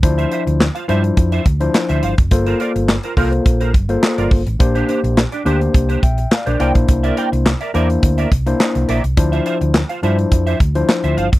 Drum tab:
HH |xxxx-xxxxxxx-xxx|xxxx-xoxxxxx-xox|xxxx-xxxxxxx-xxx|xxxx-xxxxxxx-xxx|
CP |----x-------x---|----x-------x---|----x-------x---|----x-------x---|
SD |----o-------o---|----o-------o---|----o-------o---|----o-------o---|
BD |o-------o-o----o|o-----o-o-o---o-|o-------o-o----o|o-------o-o-----|

HH |xxxx-xxxxxxx-xxx|
CP |----x-------x---|
SD |----o-------o---|
BD |o-------o-o----o|